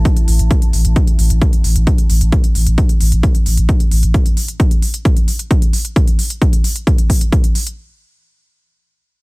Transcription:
Already playing: ambient pad A3 E4 E5 A5
0.05 kick, closed hi-hat
0.17 closed hi-hat
0.28 sub bass A1, open hi-hat
0.39 sub bass A1, closed hi-hat
0.51 kick, closed hi-hat
0.62 closed hi-hat
0.73 sub bass A1, open hi-hat
0.85 sub bass A1, closed hi-hat
0.96 kick, closed hi-hat
1.07 closed hi-hat
1.19 sub bass A1, open hi-hat
1.30 sub bass A1, closed hi-hat
1.42 kick, closed hi-hat
1.53 closed hi-hat
1.64 sub bass A1, open hi-hat
1.76 sub bass A1, closed hi-hat
1.87 kick, closed hi-hat
1.98 closed hi-hat
2.10 sub bass A1, open hi-hat
2.21 sub bass A1, closed hi-hat
2.32 kick, closed hi-hat
2.44 closed hi-hat
2.55 sub bass A1, open hi-hat
2.67 sub bass A1, closed hi-hat
2.78 kick, closed hi-hat
2.89 closed hi-hat
3.01 sub bass A1, open hi-hat
3.12 sub bass A1, closed hi-hat
3.23 kick, closed hi-hat
3.35 closed hi-hat
3.46 sub bass A1, open hi-hat
3.57 sub bass A1, closed hi-hat
3.69 kick, closed hi-hat
3.80 closed hi-hat
3.92 sub bass A1, open hi-hat
4.03 sub bass A1, closed hi-hat
4.14 kick, closed hi-hat
4.26 closed hi-hat
4.37 open hi-hat
4.48 closed hi-hat
4.60 kick, closed hi-hat
4.71 closed hi-hat
4.82 open hi-hat
4.94 closed hi-hat
5.05 kick, closed hi-hat
5.17 closed hi-hat
5.28 open hi-hat
5.39 closed hi-hat
5.51 kick, closed hi-hat
5.62 closed hi-hat
5.73 open hi-hat
5.85 closed hi-hat
5.96 kick, closed hi-hat
6.07 closed hi-hat
6.19 open hi-hat
6.30 closed hi-hat
6.42 kick, closed hi-hat
6.53 closed hi-hat
6.64 open hi-hat
6.76 closed hi-hat
6.87 kick, closed hi-hat
6.98 closed hi-hat
7.10 kick, open hi-hat
7.21 closed hi-hat
7.32 kick, closed hi-hat
7.44 closed hi-hat
7.55 open hi-hat
7.67 closed hi-hat

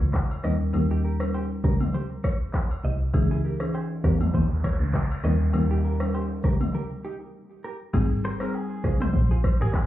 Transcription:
0.00 double bass C#2, shaker
0.14 kick, cross-stick, clap, low woodblock, shaker
0.31 high agogo
0.43 double bass D#2, marimba G3 C#4 D#4 A#4, clean electric guitar A#4 D#5, cross-stick, shaker
0.60 shaker
0.73 double bass D#2, marimba G3 C#4 D#4 A#4, high agogo, shaker
0.91 clean electric guitar D#4 G4
1.04 clean electric guitar G4 A#4, shaker
1.20 marimba G3 C#4 D#4 A#4, cross-stick, high agogo, shaker
1.34 clean electric guitar G4 C5, low woodblock, shaker
1.63 double bass C#2, clean electric guitar G4 A#4, kick, shaker
1.80 mid tom, high agogo, shaker
1.94 clean electric guitar G4 C5, shaker
2.24 clean electric guitar A#4 C#5, kick, cross-stick, high agogo, shaker
2.40 shaker
2.54 kick, cross-stick, clap, low woodblock, shaker
2.71 high agogo
2.84 double bass C2, clean electric guitar C5 D#5, shaker
3.01 shaker
3.13 double bass C#2, marimba E3 C#4 D#4 G#4, kick, noise sweep, high agogo, shaker
3.31 clean electric guitar E4 G#4
3.44 clean electric guitar G4 A#4, shaker
3.60 marimba E3 C#4 D#4 G#4, cross-stick, high agogo, shaker
3.74 clean electric guitar G#4 C5, low woodblock, shaker
4.03 double bass E2, clean electric guitar G4 A#4, kick, cross-stick, shaker
4.20 mid tom, high agogo, shaker
4.34 double bass D#2, clean electric guitar G#4 C5, kick, shaker
4.64 clean electric guitar A#4 C#5, kick, cross-stick, high agogo, shaker
4.80 double bass C#2, shaker
4.94 kick, cross-stick, clap, low woodblock, shaker
5.11 high agogo
5.23 double bass D#2, marimba G3 C#4 D#4 A#4, clean electric guitar A#4 D#5, cross-stick, shaker
5.41 shaker
5.53 double bass D#2, marimba G3 C#4 D#4 A#4, high agogo, shaker
5.71 clean electric guitar D#4 G4
5.84 clean electric guitar G4 A#4, shaker
6.00 marimba G3 C#4 D#4 A#4, cross-stick, high agogo, shaker
6.14 clean electric guitar G4 C5, low woodblock, shaker
6.43 double bass C#2, clean electric guitar G4 A#4, kick, cross-stick, open hi-hat, shaker
6.60 mid tom, high agogo, shaker
6.75 clean electric guitar G4 A#4
7.05 clean electric guitar D#4 G4
7.64 clean electric guitar G4 A#4
7.93 double bass G#1, marimba G3 C4 D#4 G#4, clean electric guitar D#4 G#4, kick, crash, high agogo, shaker
8.24 clean electric guitar G4 A#4 C5, shaker
8.40 marimba G3 C4 D#4 G#4, clean electric guitar G#4 A#4 C5, cross-stick, high agogo, shaker
8.54 clean electric guitar G#4, low woodblock, shaker
8.83 double bass C2, clean electric guitar F4 G#4, kick, cross-stick, shaker
9.00 clean electric guitar C5, mid tom, high agogo, shaker
9.14 double bass A#1, kick, shaker
9.31 clean electric guitar F4 G#4
9.44 kick, cross-stick, high agogo, shaker
9.60 double bass G#1, clean electric guitar G4 G#4 A#4, shaker
9.74 kick, cross-stick, clap, low woodblock, shaker

